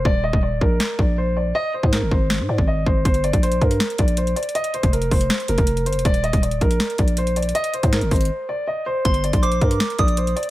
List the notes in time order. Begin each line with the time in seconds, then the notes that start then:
0.05 D#1 D5, kick
0.24 D#5
0.33 D#1, kick
0.43 D5
0.52 D1
0.61 A#1 A#4, kick
0.80 snare
0.99 A#1 D5, kick
1.18 C5
1.37 D5
1.55 D#5
1.74 C5
1.83 G#2, kick
1.92 A#4, snare
2.02 G1
2.11 G#1 C5, kick
2.30 snare
2.40 G#2
2.49 G#2 D5
2.58 G#1, kick
2.67 D#5
2.86 G#1 C5, kick
3.05 G1 C5, kick, closed hi-hat
3.14 closed hi-hat
3.24 D5, closed hi-hat
3.33 A#1, kick, closed hi-hat
3.43 C5, closed hi-hat
3.52 closed hi-hat
3.61 G2 A#4, kick, closed hi-hat
3.71 closed hi-hat
3.80 snare, closed hi-hat
3.90 closed hi-hat
3.98 A#1 D5, kick, closed hi-hat
4.08 closed hi-hat
4.17 C5, closed hi-hat
4.27 closed hi-hat
4.36 D5, closed hi-hat
4.43 closed hi-hat
4.49 closed hi-hat
4.55 D#5, closed hi-hat
4.64 closed hi-hat
4.74 C5, closed hi-hat
4.83 F1, kick, closed hi-hat
4.93 A#4, closed hi-hat
5.02 closed hi-hat
5.11 F1 C5, kick, closed hi-hat, open hi-hat
5.21 closed hi-hat
5.30 snare, closed hi-hat
5.40 closed hi-hat
5.48 F1 A#4, closed hi-hat
5.58 F1, kick, closed hi-hat
5.67 closed hi-hat
5.77 closed hi-hat
5.86 G1 C5, closed hi-hat
5.93 F1, closed hi-hat
5.99 closed hi-hat
6.05 D#1 D5, kick, closed hi-hat
6.14 closed hi-hat
6.24 D#5, closed hi-hat
6.33 D#1, kick, closed hi-hat
6.43 D5, closed hi-hat
6.51 D1, closed hi-hat
6.61 A#1 A#4, kick, closed hi-hat
6.71 closed hi-hat
6.80 snare, closed hi-hat
6.90 closed hi-hat
6.98 A#1 D5, kick, closed hi-hat
7.08 closed hi-hat
7.17 C5, closed hi-hat
7.27 closed hi-hat
7.36 D5, closed hi-hat
7.42 closed hi-hat
7.49 closed hi-hat
7.55 D#5, closed hi-hat
7.64 closed hi-hat
7.74 C5, closed hi-hat
7.83 G#2, kick, closed hi-hat
7.92 A#4, snare, closed hi-hat
8.01 G1, closed hi-hat
8.11 G#1 C5, kick, closed hi-hat, open hi-hat
8.16 closed hi-hat
8.21 closed hi-hat
8.25 closed hi-hat
8.49 D5
8.67 D#5
8.86 C5
9.05 G1 C5 C6, kick, closed hi-hat
9.14 closed hi-hat
9.24 D5, closed hi-hat
9.33 A#1, kick, closed hi-hat
9.43 C5 D6, closed hi-hat
9.52 closed hi-hat
9.61 G2 A#4, kick, closed hi-hat
9.71 closed hi-hat
9.80 snare, closed hi-hat
9.90 closed hi-hat
9.99 A#1 D5 D#6, kick, closed hi-hat
10.08 closed hi-hat
10.17 C5, closed hi-hat
10.27 closed hi-hat
10.36 D5, closed hi-hat
10.43 closed hi-hat